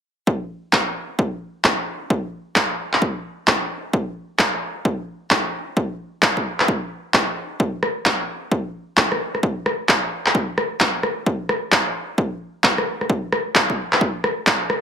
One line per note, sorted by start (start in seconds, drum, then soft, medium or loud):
0.27 kick loud
0.73 kick loud
0.73 clap loud
1.19 kick loud
1.64 kick loud
1.64 clap loud
2.10 kick loud
2.56 kick loud
2.56 clap loud
2.93 clap medium
3.02 kick loud
3.48 kick loud
3.48 clap loud
3.93 kick loud
4.39 kick loud
4.39 clap loud
4.85 kick loud
5.31 kick loud
5.31 clap loud
5.77 kick loud
6.22 kick loud
6.22 clap loud
6.37 kick medium
6.60 clap medium
6.68 kick loud
7.14 kick loud
7.14 clap loud
7.60 kick loud
7.83 cross-stick medium
8.06 kick loud
8.06 clap loud
8.52 kick loud
8.97 kick loud
8.97 clap loud
9.12 cross-stick medium
9.35 cross-stick soft
9.43 kick loud
9.66 cross-stick medium
9.89 kick loud
9.89 clap loud
10.26 clap medium
10.35 kick loud
10.58 cross-stick medium
10.80 kick loud
10.80 clap loud
11.03 cross-stick soft
11.26 kick loud
11.49 cross-stick medium
11.72 kick loud
11.72 clap loud
12.18 kick loud
12.64 kick loud
12.64 clap loud
12.78 cross-stick medium
13.01 cross-stick soft
13.10 kick loud
13.32 cross-stick medium
13.55 kick loud
13.55 clap loud
13.70 kick medium
13.93 clap medium
14.01 kick loud
14.24 cross-stick medium
14.47 kick loud
14.47 clap loud
14.70 cross-stick medium